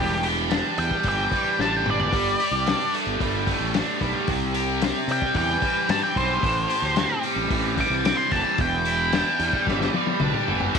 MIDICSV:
0, 0, Header, 1, 5, 480
1, 0, Start_track
1, 0, Tempo, 538600
1, 1896, Time_signature, 4, 2, 24, 8
1, 9615, End_track
2, 0, Start_track
2, 0, Title_t, "Lead electric guitar"
2, 0, Program_c, 0, 29
2, 0, Note_on_c, 0, 67, 98
2, 217, Note_off_c, 0, 67, 0
2, 706, Note_on_c, 0, 79, 86
2, 934, Note_off_c, 0, 79, 0
2, 970, Note_on_c, 0, 79, 90
2, 1419, Note_off_c, 0, 79, 0
2, 1439, Note_on_c, 0, 81, 91
2, 1574, Note_off_c, 0, 81, 0
2, 1574, Note_on_c, 0, 79, 87
2, 1672, Note_off_c, 0, 79, 0
2, 1697, Note_on_c, 0, 74, 107
2, 2609, Note_off_c, 0, 74, 0
2, 4561, Note_on_c, 0, 79, 87
2, 4775, Note_off_c, 0, 79, 0
2, 4786, Note_on_c, 0, 79, 95
2, 5247, Note_off_c, 0, 79, 0
2, 5264, Note_on_c, 0, 81, 91
2, 5374, Note_off_c, 0, 81, 0
2, 5378, Note_on_c, 0, 79, 86
2, 5494, Note_off_c, 0, 79, 0
2, 5500, Note_on_c, 0, 72, 103
2, 6429, Note_off_c, 0, 72, 0
2, 6957, Note_on_c, 0, 86, 112
2, 7063, Note_off_c, 0, 86, 0
2, 7180, Note_on_c, 0, 86, 92
2, 7278, Note_off_c, 0, 86, 0
2, 7282, Note_on_c, 0, 84, 85
2, 7405, Note_off_c, 0, 84, 0
2, 7412, Note_on_c, 0, 81, 89
2, 7646, Note_off_c, 0, 81, 0
2, 7674, Note_on_c, 0, 79, 105
2, 8596, Note_off_c, 0, 79, 0
2, 9615, End_track
3, 0, Start_track
3, 0, Title_t, "Overdriven electric guitar"
3, 0, Program_c, 1, 29
3, 0, Note_on_c, 1, 40, 70
3, 0, Note_on_c, 1, 55, 60
3, 0, Note_on_c, 1, 67, 70
3, 207, Note_off_c, 1, 67, 0
3, 211, Note_on_c, 1, 67, 69
3, 442, Note_on_c, 1, 62, 74
3, 696, Note_off_c, 1, 55, 0
3, 699, Note_on_c, 1, 55, 65
3, 944, Note_on_c, 1, 52, 71
3, 1167, Note_off_c, 1, 40, 0
3, 1185, Note_off_c, 1, 55, 0
3, 1188, Note_on_c, 1, 55, 69
3, 1430, Note_off_c, 1, 62, 0
3, 1441, Note_on_c, 1, 62, 71
3, 1663, Note_off_c, 1, 52, 0
3, 1674, Note_on_c, 1, 52, 71
3, 1905, Note_off_c, 1, 52, 0
3, 1909, Note_off_c, 1, 62, 0
3, 1910, Note_off_c, 1, 55, 0
3, 1910, Note_on_c, 1, 55, 75
3, 2140, Note_off_c, 1, 67, 0
3, 2144, Note_on_c, 1, 67, 71
3, 2379, Note_on_c, 1, 62, 70
3, 2621, Note_on_c, 1, 57, 66
3, 2857, Note_off_c, 1, 55, 0
3, 2860, Note_on_c, 1, 55, 68
3, 3089, Note_off_c, 1, 57, 0
3, 3100, Note_on_c, 1, 57, 68
3, 3326, Note_off_c, 1, 62, 0
3, 3336, Note_on_c, 1, 62, 68
3, 3570, Note_off_c, 1, 55, 0
3, 3574, Note_on_c, 1, 55, 75
3, 3816, Note_off_c, 1, 62, 0
3, 3818, Note_off_c, 1, 57, 0
3, 3821, Note_on_c, 1, 48, 79
3, 4053, Note_off_c, 1, 67, 0
3, 4057, Note_on_c, 1, 67, 73
3, 4305, Note_on_c, 1, 60, 72
3, 4544, Note_off_c, 1, 55, 0
3, 4544, Note_on_c, 1, 55, 61
3, 4767, Note_on_c, 1, 52, 70
3, 5006, Note_off_c, 1, 55, 0
3, 5010, Note_on_c, 1, 55, 66
3, 5019, Note_off_c, 1, 48, 0
3, 5235, Note_off_c, 1, 60, 0
3, 5246, Note_on_c, 1, 60, 74
3, 5479, Note_off_c, 1, 52, 0
3, 5483, Note_on_c, 1, 52, 65
3, 5715, Note_on_c, 1, 45, 71
3, 5731, Note_off_c, 1, 60, 0
3, 5742, Note_off_c, 1, 55, 0
3, 5742, Note_off_c, 1, 67, 0
3, 5953, Note_on_c, 1, 67, 70
3, 6206, Note_on_c, 1, 60, 71
3, 6454, Note_on_c, 1, 55, 73
3, 6680, Note_off_c, 1, 52, 0
3, 6683, Note_on_c, 1, 52, 75
3, 6919, Note_off_c, 1, 55, 0
3, 6925, Note_off_c, 1, 45, 0
3, 6930, Note_on_c, 1, 55, 69
3, 7152, Note_off_c, 1, 60, 0
3, 7163, Note_on_c, 1, 60, 68
3, 7164, Note_off_c, 1, 67, 0
3, 7398, Note_off_c, 1, 52, 0
3, 7408, Note_on_c, 1, 52, 72
3, 7649, Note_off_c, 1, 60, 0
3, 7652, Note_off_c, 1, 52, 0
3, 7653, Note_off_c, 1, 55, 0
3, 7661, Note_on_c, 1, 40, 79
3, 7899, Note_on_c, 1, 64, 76
3, 8141, Note_on_c, 1, 62, 74
3, 8372, Note_on_c, 1, 55, 64
3, 8605, Note_on_c, 1, 52, 68
3, 8849, Note_off_c, 1, 55, 0
3, 8858, Note_off_c, 1, 40, 0
3, 8859, Note_on_c, 1, 55, 69
3, 9084, Note_off_c, 1, 62, 0
3, 9094, Note_on_c, 1, 62, 70
3, 9097, Note_off_c, 1, 64, 0
3, 9337, Note_off_c, 1, 52, 0
3, 9347, Note_on_c, 1, 52, 73
3, 9575, Note_off_c, 1, 62, 0
3, 9577, Note_off_c, 1, 55, 0
3, 9581, Note_off_c, 1, 52, 0
3, 9615, End_track
4, 0, Start_track
4, 0, Title_t, "Fingered electric bass"
4, 0, Program_c, 2, 33
4, 0, Note_on_c, 2, 28, 93
4, 533, Note_off_c, 2, 28, 0
4, 695, Note_on_c, 2, 40, 85
4, 788, Note_off_c, 2, 40, 0
4, 935, Note_on_c, 2, 31, 87
4, 1121, Note_off_c, 2, 31, 0
4, 1415, Note_on_c, 2, 33, 90
4, 1631, Note_off_c, 2, 33, 0
4, 1656, Note_on_c, 2, 31, 73
4, 1872, Note_off_c, 2, 31, 0
4, 1896, Note_on_c, 2, 31, 81
4, 2082, Note_off_c, 2, 31, 0
4, 2239, Note_on_c, 2, 36, 81
4, 2432, Note_off_c, 2, 36, 0
4, 2731, Note_on_c, 2, 31, 101
4, 2826, Note_off_c, 2, 31, 0
4, 2856, Note_on_c, 2, 31, 94
4, 3134, Note_off_c, 2, 31, 0
4, 3200, Note_on_c, 2, 33, 81
4, 3392, Note_off_c, 2, 33, 0
4, 3576, Note_on_c, 2, 35, 76
4, 3669, Note_off_c, 2, 35, 0
4, 3817, Note_on_c, 2, 36, 91
4, 4373, Note_off_c, 2, 36, 0
4, 4523, Note_on_c, 2, 48, 77
4, 4621, Note_off_c, 2, 48, 0
4, 4762, Note_on_c, 2, 40, 79
4, 4953, Note_off_c, 2, 40, 0
4, 5248, Note_on_c, 2, 43, 91
4, 5344, Note_off_c, 2, 43, 0
4, 5490, Note_on_c, 2, 35, 83
4, 5678, Note_off_c, 2, 35, 0
4, 5736, Note_on_c, 2, 33, 82
4, 5921, Note_off_c, 2, 33, 0
4, 6079, Note_on_c, 2, 38, 89
4, 6271, Note_off_c, 2, 38, 0
4, 6560, Note_on_c, 2, 33, 95
4, 6659, Note_off_c, 2, 33, 0
4, 6689, Note_on_c, 2, 33, 91
4, 6970, Note_off_c, 2, 33, 0
4, 7040, Note_on_c, 2, 36, 87
4, 7232, Note_off_c, 2, 36, 0
4, 7410, Note_on_c, 2, 30, 80
4, 7505, Note_off_c, 2, 30, 0
4, 7650, Note_on_c, 2, 28, 90
4, 8209, Note_off_c, 2, 28, 0
4, 8372, Note_on_c, 2, 40, 80
4, 8466, Note_off_c, 2, 40, 0
4, 8617, Note_on_c, 2, 31, 89
4, 8802, Note_off_c, 2, 31, 0
4, 9099, Note_on_c, 2, 35, 103
4, 9190, Note_off_c, 2, 35, 0
4, 9343, Note_on_c, 2, 31, 75
4, 9525, Note_off_c, 2, 31, 0
4, 9580, Note_on_c, 2, 33, 84
4, 9615, Note_off_c, 2, 33, 0
4, 9615, End_track
5, 0, Start_track
5, 0, Title_t, "Drums"
5, 206, Note_on_c, 9, 46, 57
5, 295, Note_off_c, 9, 46, 0
5, 451, Note_on_c, 9, 46, 74
5, 459, Note_on_c, 9, 38, 101
5, 540, Note_off_c, 9, 46, 0
5, 548, Note_off_c, 9, 38, 0
5, 692, Note_on_c, 9, 46, 53
5, 781, Note_off_c, 9, 46, 0
5, 810, Note_on_c, 9, 36, 68
5, 899, Note_off_c, 9, 36, 0
5, 921, Note_on_c, 9, 46, 70
5, 930, Note_on_c, 9, 36, 80
5, 1010, Note_off_c, 9, 46, 0
5, 1019, Note_off_c, 9, 36, 0
5, 1173, Note_on_c, 9, 36, 77
5, 1175, Note_on_c, 9, 46, 58
5, 1262, Note_off_c, 9, 36, 0
5, 1264, Note_off_c, 9, 46, 0
5, 1423, Note_on_c, 9, 38, 69
5, 1512, Note_off_c, 9, 38, 0
5, 1656, Note_on_c, 9, 45, 80
5, 1745, Note_off_c, 9, 45, 0
5, 1780, Note_on_c, 9, 43, 88
5, 1869, Note_off_c, 9, 43, 0
5, 1895, Note_on_c, 9, 36, 103
5, 1898, Note_on_c, 9, 46, 82
5, 1984, Note_off_c, 9, 36, 0
5, 1987, Note_off_c, 9, 46, 0
5, 2135, Note_on_c, 9, 46, 63
5, 2224, Note_off_c, 9, 46, 0
5, 2378, Note_on_c, 9, 46, 78
5, 2386, Note_on_c, 9, 38, 105
5, 2467, Note_off_c, 9, 46, 0
5, 2475, Note_off_c, 9, 38, 0
5, 2623, Note_on_c, 9, 46, 58
5, 2712, Note_off_c, 9, 46, 0
5, 2856, Note_on_c, 9, 36, 90
5, 2860, Note_on_c, 9, 46, 68
5, 2945, Note_off_c, 9, 36, 0
5, 2949, Note_off_c, 9, 46, 0
5, 3093, Note_on_c, 9, 36, 74
5, 3094, Note_on_c, 9, 46, 57
5, 3182, Note_off_c, 9, 36, 0
5, 3183, Note_off_c, 9, 46, 0
5, 3333, Note_on_c, 9, 46, 78
5, 3341, Note_on_c, 9, 38, 111
5, 3422, Note_off_c, 9, 46, 0
5, 3430, Note_off_c, 9, 38, 0
5, 3574, Note_on_c, 9, 36, 78
5, 3575, Note_on_c, 9, 46, 49
5, 3663, Note_off_c, 9, 36, 0
5, 3664, Note_off_c, 9, 46, 0
5, 3810, Note_on_c, 9, 46, 78
5, 3814, Note_on_c, 9, 36, 104
5, 3899, Note_off_c, 9, 46, 0
5, 3903, Note_off_c, 9, 36, 0
5, 4050, Note_on_c, 9, 46, 59
5, 4139, Note_off_c, 9, 46, 0
5, 4291, Note_on_c, 9, 46, 68
5, 4299, Note_on_c, 9, 38, 94
5, 4381, Note_off_c, 9, 46, 0
5, 4389, Note_off_c, 9, 38, 0
5, 4532, Note_on_c, 9, 46, 57
5, 4621, Note_off_c, 9, 46, 0
5, 4650, Note_on_c, 9, 36, 72
5, 4739, Note_off_c, 9, 36, 0
5, 4764, Note_on_c, 9, 46, 73
5, 4768, Note_on_c, 9, 36, 87
5, 4854, Note_off_c, 9, 46, 0
5, 4857, Note_off_c, 9, 36, 0
5, 5010, Note_on_c, 9, 36, 81
5, 5010, Note_on_c, 9, 46, 60
5, 5099, Note_off_c, 9, 36, 0
5, 5099, Note_off_c, 9, 46, 0
5, 5250, Note_on_c, 9, 46, 86
5, 5258, Note_on_c, 9, 38, 125
5, 5339, Note_off_c, 9, 46, 0
5, 5347, Note_off_c, 9, 38, 0
5, 5492, Note_on_c, 9, 36, 72
5, 5499, Note_on_c, 9, 46, 50
5, 5581, Note_off_c, 9, 36, 0
5, 5588, Note_off_c, 9, 46, 0
5, 5731, Note_on_c, 9, 36, 109
5, 5736, Note_on_c, 9, 46, 79
5, 5820, Note_off_c, 9, 36, 0
5, 5826, Note_off_c, 9, 46, 0
5, 5971, Note_on_c, 9, 46, 62
5, 6060, Note_off_c, 9, 46, 0
5, 6203, Note_on_c, 9, 46, 74
5, 6211, Note_on_c, 9, 38, 113
5, 6292, Note_off_c, 9, 46, 0
5, 6300, Note_off_c, 9, 38, 0
5, 6446, Note_on_c, 9, 46, 58
5, 6535, Note_off_c, 9, 46, 0
5, 6688, Note_on_c, 9, 36, 104
5, 6690, Note_on_c, 9, 46, 76
5, 6778, Note_off_c, 9, 36, 0
5, 6779, Note_off_c, 9, 46, 0
5, 6929, Note_on_c, 9, 36, 78
5, 6930, Note_on_c, 9, 46, 56
5, 7018, Note_off_c, 9, 36, 0
5, 7019, Note_off_c, 9, 46, 0
5, 7175, Note_on_c, 9, 46, 88
5, 7183, Note_on_c, 9, 38, 122
5, 7264, Note_off_c, 9, 46, 0
5, 7272, Note_off_c, 9, 38, 0
5, 7408, Note_on_c, 9, 46, 58
5, 7412, Note_on_c, 9, 36, 73
5, 7497, Note_off_c, 9, 46, 0
5, 7501, Note_off_c, 9, 36, 0
5, 7648, Note_on_c, 9, 46, 75
5, 7652, Note_on_c, 9, 36, 110
5, 7737, Note_off_c, 9, 46, 0
5, 7741, Note_off_c, 9, 36, 0
5, 7890, Note_on_c, 9, 46, 57
5, 7979, Note_off_c, 9, 46, 0
5, 8131, Note_on_c, 9, 46, 72
5, 8139, Note_on_c, 9, 38, 106
5, 8220, Note_off_c, 9, 46, 0
5, 8228, Note_off_c, 9, 38, 0
5, 8373, Note_on_c, 9, 46, 52
5, 8462, Note_off_c, 9, 46, 0
5, 8495, Note_on_c, 9, 36, 75
5, 8584, Note_off_c, 9, 36, 0
5, 8617, Note_on_c, 9, 36, 92
5, 8627, Note_on_c, 9, 38, 59
5, 8706, Note_off_c, 9, 36, 0
5, 8716, Note_off_c, 9, 38, 0
5, 8742, Note_on_c, 9, 38, 56
5, 8831, Note_off_c, 9, 38, 0
5, 8860, Note_on_c, 9, 48, 73
5, 8949, Note_off_c, 9, 48, 0
5, 8972, Note_on_c, 9, 48, 69
5, 9061, Note_off_c, 9, 48, 0
5, 9088, Note_on_c, 9, 47, 91
5, 9178, Note_off_c, 9, 47, 0
5, 9210, Note_on_c, 9, 45, 76
5, 9299, Note_off_c, 9, 45, 0
5, 9340, Note_on_c, 9, 43, 86
5, 9429, Note_off_c, 9, 43, 0
5, 9451, Note_on_c, 9, 43, 85
5, 9540, Note_off_c, 9, 43, 0
5, 9579, Note_on_c, 9, 49, 116
5, 9579, Note_on_c, 9, 57, 86
5, 9580, Note_on_c, 9, 36, 116
5, 9615, Note_off_c, 9, 36, 0
5, 9615, Note_off_c, 9, 49, 0
5, 9615, Note_off_c, 9, 57, 0
5, 9615, End_track
0, 0, End_of_file